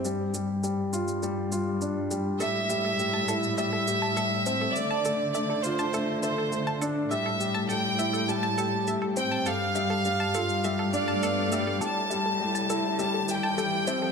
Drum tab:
SH |x-x-x-xxx-x-x-x-|x-x-x-xxx-x-x-x-|x-x-x-xxx-x-x-x-|x-x-x-xxx-x-x-x-|

SH |x-x-x-xxx-x-x-x-|x-x--xx-x-x-x-x-|